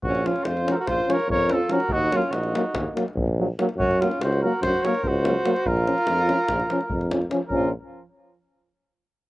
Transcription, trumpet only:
\new Staff \with { instrumentName = "Trumpet" } { \time 9/8 \key bes \minor \tempo 4. = 96 ges'8 f'8 c''8 bes'32 c''32 bes'16 c''8 des''8 des''8 a'8 bes'8 | ges'8 f'8 ges'4. r2 | ges'8 f'8 c''8 bes'8 c''8 des''8 c''4. | bes'2.~ bes'8 r4 |
bes'8 r1 | }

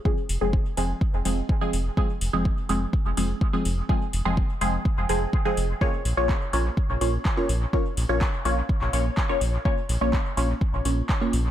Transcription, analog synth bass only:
\new Staff \with { instrumentName = "Analog synth bass" } { \clef bass \time 4/4 \key f \minor \tempo 4 = 125 r8 f,,16 f,,16 r8 f,,16 r8 f,,16 f,,16 r8. f,,16 r16 | r8 f,,16 f,,16 r8 f,,16 r8 f,,16 f,,16 r8. f,,16 r16 | r8 f,,16 f,,16 r8 f,,16 r8 f,,16 f,,16 r8. f,,16 r16 | r8 bes,,16 bes,,16 r8 bes,,16 r8 bes,,16 bes,,16 r8. bes,,16 r16 |
r8 bes,,16 bes,,16 r8 bes,,16 r8 bes,,16 bes,,16 r8. bes,,16 r16 | r8 bes,,16 bes,,16 r8 bes,,16 r8 bes,,16 bes,,16 r8. bes,,16 r16 | }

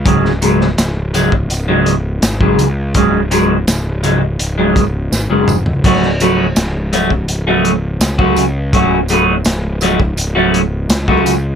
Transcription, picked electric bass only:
\new Staff \with { instrumentName = "Picked electric bass" } { \clef bass \time 4/4 \tempo 4 = 83 cis,,4 cis,,4 cis,,4 gis,,8 cis,8 | cis,,4 cis,,4 cis,,4 gis,,16 fis,,16 eis,,16 cis,,16 | cis,,4 cis,,4 cis,,4 cis,8 cis,8 | cis,,4 cis,,4 cis,,4 cis,8 cis,8 | }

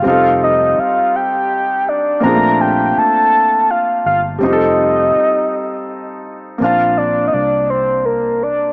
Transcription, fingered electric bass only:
\new Staff \with { instrumentName = "Fingered electric bass" } { \clef bass \time 6/8 \key bes \major \tempo 4. = 55 f,,4 r2 | bes,,4 r4. g,,8 | f,,4 r2 | bes,,4 c,2 | }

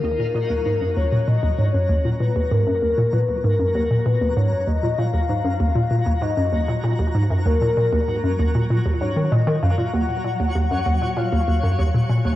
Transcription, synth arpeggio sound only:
\new Staff \with { instrumentName = "Synth arpeggio sound" } { \clef bass \time 4/4 \key ees \minor \tempo 4 = 97 ees,16 bes,16 bes,16 ees,16 aes,16 ges,16 ees,16 bes,16 bes,16 ees,16 aes,16 ges,16 ees,16 bes,16 bes,16 ees,16 | aes,16 ges,16 ees,16 bes,16 bes,16 ees,16 aes,16 ges,16 ees,16 bes,16 bes,16 ees,16 aes,16 ges,16 ees,16 bes,16 | bes,16 ees,16 aes,16 ges,16 ees,16 bes,16 bes,16 ees,16 aes,16 ges,16 ees,16 bes,16 bes,16 ees,16 aes,16 ges,16 | ees,16 bes,16 bes,16 ees,16 aes,16 ges,16 ees,16 bes,16 bes,16 ees,16 aes,16 ees16 bes,16 ees16 ges,16 bes,16 |
ees,16 bes,16 bes,16 ees,16 ees,16 ges,16 ees,16 bes,16 bes,16 ees,16 ees,16 ges,16 ees,16 bes,16 bes,16 ees,16 | }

